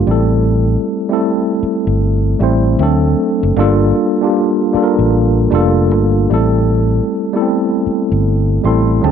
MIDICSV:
0, 0, Header, 1, 4, 480
1, 0, Start_track
1, 0, Tempo, 779221
1, 276, Time_signature, 4, 2, 24, 8
1, 5615, End_track
2, 0, Start_track
2, 0, Title_t, "Tine electric piano"
2, 0, Program_c, 0, 4
2, 0, Control_c, 0, 64, 127
2, 42, Note_on_c, 0, 55, 97
2, 45, Control_c, 0, 64, 0
2, 51, Note_on_c, 0, 57, 83
2, 53, Note_on_c, 0, 60, 83
2, 61, Note_on_c, 0, 64, 82
2, 68, Note_on_c, 0, 69, 115
2, 163, Control_c, 0, 64, 127
2, 523, Note_off_c, 0, 55, 0
2, 528, Note_off_c, 0, 57, 0
2, 529, Note_off_c, 0, 60, 0
2, 533, Note_off_c, 0, 64, 0
2, 536, Note_off_c, 0, 69, 0
2, 672, Note_on_c, 0, 55, 90
2, 676, Note_on_c, 0, 57, 89
2, 682, Note_on_c, 0, 60, 84
2, 690, Note_on_c, 0, 64, 84
2, 697, Note_on_c, 0, 69, 102
2, 1335, Note_off_c, 0, 55, 0
2, 1337, Note_off_c, 0, 57, 0
2, 1341, Note_off_c, 0, 60, 0
2, 1344, Note_off_c, 0, 64, 0
2, 1348, Note_off_c, 0, 69, 0
2, 1475, Note_on_c, 0, 55, 99
2, 1480, Note_on_c, 0, 57, 93
2, 1491, Note_on_c, 0, 60, 95
2, 1493, Note_on_c, 0, 64, 90
2, 1499, Note_on_c, 0, 72, 103
2, 1716, Note_off_c, 0, 55, 0
2, 1718, Note_off_c, 0, 57, 0
2, 1719, Note_on_c, 0, 54, 89
2, 1723, Note_off_c, 0, 60, 0
2, 1724, Note_off_c, 0, 64, 0
2, 1724, Control_c, 0, 64, 0
2, 1725, Note_on_c, 0, 57, 91
2, 1728, Note_off_c, 0, 72, 0
2, 1729, Note_on_c, 0, 60, 87
2, 1737, Note_on_c, 0, 62, 88
2, 1743, Note_on_c, 0, 69, 117
2, 1819, Control_c, 0, 64, 127
2, 2130, Note_off_c, 0, 54, 0
2, 2133, Note_off_c, 0, 57, 0
2, 2135, Note_off_c, 0, 60, 0
2, 2139, Note_off_c, 0, 62, 0
2, 2142, Note_off_c, 0, 69, 0
2, 2196, Note_on_c, 0, 55, 126
2, 2201, Note_on_c, 0, 58, 118
2, 2205, Control_c, 0, 64, 0
2, 2209, Note_on_c, 0, 62, 117
2, 2213, Note_on_c, 0, 65, 115
2, 2218, Note_on_c, 0, 69, 127
2, 2296, Control_c, 0, 64, 127
2, 2500, Note_off_c, 0, 55, 0
2, 2503, Note_off_c, 0, 58, 0
2, 2507, Note_off_c, 0, 62, 0
2, 2509, Note_off_c, 0, 65, 0
2, 2511, Note_off_c, 0, 69, 0
2, 2593, Note_on_c, 0, 55, 90
2, 2600, Note_on_c, 0, 58, 80
2, 2604, Note_on_c, 0, 62, 87
2, 2611, Note_on_c, 0, 65, 84
2, 2616, Note_on_c, 0, 67, 95
2, 2867, Note_off_c, 0, 55, 0
2, 2871, Note_off_c, 0, 58, 0
2, 2873, Note_off_c, 0, 62, 0
2, 2877, Note_off_c, 0, 65, 0
2, 2879, Note_off_c, 0, 67, 0
2, 2913, Note_on_c, 0, 55, 92
2, 2919, Note_on_c, 0, 58, 88
2, 2925, Note_on_c, 0, 62, 84
2, 2931, Note_on_c, 0, 65, 76
2, 2936, Note_on_c, 0, 69, 82
2, 2977, Note_off_c, 0, 69, 0
2, 2978, Note_on_c, 0, 70, 102
2, 3327, Note_off_c, 0, 55, 0
2, 3330, Note_off_c, 0, 58, 0
2, 3333, Note_off_c, 0, 62, 0
2, 3336, Note_off_c, 0, 65, 0
2, 3360, Note_off_c, 0, 70, 0
2, 3392, Note_on_c, 0, 55, 109
2, 3398, Note_on_c, 0, 57, 72
2, 3403, Note_on_c, 0, 62, 94
2, 3410, Note_on_c, 0, 65, 87
2, 3417, Note_on_c, 0, 69, 119
2, 3438, Note_on_c, 0, 58, 86
2, 3448, Note_off_c, 0, 57, 0
2, 3873, Note_off_c, 0, 55, 0
2, 3879, Note_off_c, 0, 62, 0
2, 3880, Note_on_c, 0, 55, 100
2, 3883, Note_off_c, 0, 65, 0
2, 3884, Control_c, 0, 64, 0
2, 3886, Note_off_c, 0, 69, 0
2, 3886, Note_on_c, 0, 57, 83
2, 3893, Note_on_c, 0, 60, 86
2, 3897, Note_off_c, 0, 58, 0
2, 3897, Note_on_c, 0, 64, 82
2, 3904, Note_on_c, 0, 69, 118
2, 3975, Control_c, 0, 64, 127
2, 4362, Note_off_c, 0, 55, 0
2, 4365, Note_off_c, 0, 57, 0
2, 4369, Note_off_c, 0, 60, 0
2, 4371, Note_off_c, 0, 64, 0
2, 4374, Note_off_c, 0, 69, 0
2, 4516, Note_on_c, 0, 55, 102
2, 4523, Note_on_c, 0, 57, 88
2, 4526, Note_on_c, 0, 59, 68
2, 4533, Note_on_c, 0, 64, 90
2, 4538, Note_off_c, 0, 59, 0
2, 4538, Note_on_c, 0, 69, 92
2, 4568, Note_on_c, 0, 60, 90
2, 5177, Note_off_c, 0, 55, 0
2, 5181, Note_off_c, 0, 57, 0
2, 5186, Note_off_c, 0, 64, 0
2, 5188, Note_off_c, 0, 69, 0
2, 5203, Note_off_c, 0, 60, 0
2, 5319, Note_on_c, 0, 55, 96
2, 5324, Note_on_c, 0, 57, 86
2, 5331, Note_on_c, 0, 84, 81
2, 5332, Note_on_c, 0, 60, 79
2, 5338, Note_on_c, 0, 64, 92
2, 5342, Note_on_c, 0, 69, 97
2, 5547, Note_off_c, 0, 84, 0
2, 5553, Note_on_c, 0, 54, 100
2, 5555, Note_off_c, 0, 57, 0
2, 5557, Note_off_c, 0, 55, 0
2, 5562, Note_off_c, 0, 60, 0
2, 5562, Note_on_c, 0, 57, 84
2, 5564, Control_c, 0, 64, 0
2, 5567, Note_off_c, 0, 64, 0
2, 5568, Note_on_c, 0, 81, 81
2, 5569, Note_off_c, 0, 69, 0
2, 5569, Note_on_c, 0, 60, 97
2, 5574, Note_on_c, 0, 62, 84
2, 5581, Note_on_c, 0, 68, 85
2, 5615, Note_off_c, 0, 54, 0
2, 5615, Note_off_c, 0, 57, 0
2, 5615, Note_off_c, 0, 60, 0
2, 5615, Note_off_c, 0, 62, 0
2, 5615, Note_off_c, 0, 68, 0
2, 5615, Note_off_c, 0, 81, 0
2, 5615, End_track
3, 0, Start_track
3, 0, Title_t, "Fingered electric bass"
3, 0, Program_c, 1, 33
3, 43, Note_on_c, 1, 33, 100
3, 465, Note_off_c, 1, 33, 0
3, 1152, Note_on_c, 1, 31, 79
3, 1440, Note_off_c, 1, 31, 0
3, 1479, Note_on_c, 1, 33, 86
3, 1690, Note_off_c, 1, 33, 0
3, 1719, Note_on_c, 1, 38, 113
3, 1930, Note_off_c, 1, 38, 0
3, 2113, Note_on_c, 1, 30, 101
3, 2188, Note_off_c, 1, 30, 0
3, 2196, Note_on_c, 1, 31, 113
3, 2409, Note_off_c, 1, 31, 0
3, 3072, Note_on_c, 1, 33, 81
3, 3360, Note_off_c, 1, 33, 0
3, 3398, Note_on_c, 1, 29, 98
3, 3642, Note_off_c, 1, 29, 0
3, 3642, Note_on_c, 1, 31, 102
3, 3852, Note_off_c, 1, 31, 0
3, 3885, Note_on_c, 1, 33, 85
3, 4306, Note_off_c, 1, 33, 0
3, 5000, Note_on_c, 1, 31, 89
3, 5284, Note_off_c, 1, 31, 0
3, 5325, Note_on_c, 1, 33, 80
3, 5533, Note_off_c, 1, 33, 0
3, 5568, Note_on_c, 1, 38, 107
3, 5615, Note_off_c, 1, 38, 0
3, 5615, End_track
4, 0, Start_track
4, 0, Title_t, "Muted fingered electric bass strokes"
4, 1003, Note_on_c, 9, 29, 54
4, 1064, Note_off_c, 9, 29, 0
4, 2922, Note_on_c, 9, 29, 51
4, 2984, Note_off_c, 9, 29, 0
4, 4845, Note_on_c, 9, 29, 49
4, 4907, Note_off_c, 9, 29, 0
4, 5615, End_track
0, 0, End_of_file